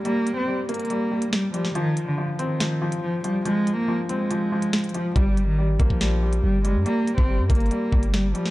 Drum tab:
HH |x---x-------xxxxx-----x-x---x---|x---x-------x---x-----x-----x---|x---x-------x---x-----x-xxxxx---|x---x-------x---x-----x-----x---|
SD |------------------------o-----o-|----------------o---------------|------------------------o-------|----------------o---------------|
BD |--------------------------------|--------------------------------|--------------------------------|o-----------o-o-----------------|

HH |x---x-------xxxxx-----x-x---x---|
SD |------------------------o-----o-|
BD |------o-----o-------o-----------|